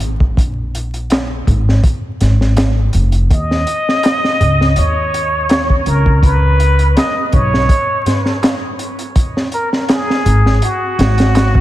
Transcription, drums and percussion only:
0.00 closed hi-hat medium
0.20 kick medium
0.37 kick loud
0.37 closed hi-hat medium
0.75 closed hi-hat medium
0.94 closed hi-hat soft
1.10 snare loud
1.10 closed hi-hat medium
1.10 darbuka tek medium
1.47 kick medium
1.47 closed hi-hat medium
1.47 darbuka dum medium
1.69 snare soft
1.84 kick loud
1.84 closed hi-hat medium
2.21 snare soft
2.21 closed hi-hat medium
2.21 darbuka dum medium
2.41 snare soft
2.57 snare loud
2.57 closed hi-hat medium
2.57 darbuka tek medium
2.93 closed hi-hat medium
3.12 closed hi-hat soft
3.31 kick loud
3.31 closed hi-hat medium
3.51 snare soft
3.67 closed hi-hat medium
3.89 snare soft
4.03 snare medium
4.03 closed hi-hat medium
4.03 darbuka tek medium
4.24 snare medium
4.40 closed hi-hat medium
4.40 darbuka dum medium
4.61 snare soft
4.76 closed hi-hat medium
5.14 closed hi-hat medium
5.49 snare loud
5.49 closed hi-hat medium
5.49 darbuka tek medium
5.70 kick medium
5.86 closed hi-hat medium
6.06 kick medium
6.23 kick loud
6.23 closed hi-hat medium
6.60 closed hi-hat medium
6.79 closed hi-hat soft
6.97 snare loud
6.97 closed hi-hat medium
6.97 darbuka tek medium
7.32 kick medium
7.32 closed hi-hat medium
7.32 darbuka dum medium
7.54 snare soft
7.69 kick loud
7.69 closed hi-hat medium
8.06 snare soft
8.06 closed hi-hat medium
8.06 darbuka dum medium
8.26 snare soft
8.43 snare loud
8.43 closed hi-hat medium
8.43 darbuka tek medium
8.79 closed hi-hat medium
8.99 closed hi-hat soft
9.16 kick loud
9.16 closed hi-hat medium
9.37 snare soft
9.52 closed hi-hat medium
9.73 snare soft
9.89 snare loud
9.89 closed hi-hat medium
9.89 darbuka tek medium
10.10 snare medium
10.25 closed hi-hat medium
10.25 darbuka dum medium
10.46 snare soft
10.62 closed hi-hat medium
10.99 snare medium
10.99 closed hi-hat medium
11.18 snare medium
11.18 closed hi-hat medium
11.35 snare loud
11.35 closed hi-hat medium
11.35 darbuka tek medium
11.55 kick medium

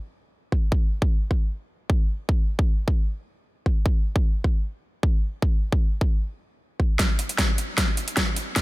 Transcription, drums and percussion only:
0.52 kick medium
0.72 kick loud
1.02 kick medium
1.31 kick medium
1.90 kick loud
2.29 kick loud
2.59 kick medium
2.88 kick medium
3.66 kick medium
3.86 kick loud
4.16 kick medium
4.44 kick medium
5.03 kick medium
5.42 kick loud
5.72 kick medium
6.01 kick loud
6.80 kick medium
6.99 kick medium
6.99 snare soft
6.99 closed hi-hat medium
7.19 closed hi-hat medium
7.29 closed hi-hat medium
7.38 kick medium
7.38 snare soft
7.38 closed hi-hat medium
7.58 closed hi-hat medium
7.78 kick loud
7.78 snare soft
7.78 closed hi-hat medium
7.97 closed hi-hat medium
8.08 closed hi-hat medium
8.17 kick medium
8.17 snare medium
8.17 closed hi-hat medium
8.36 closed hi-hat medium
8.56 kick loud
8.56 snare soft
8.56 closed hi-hat medium

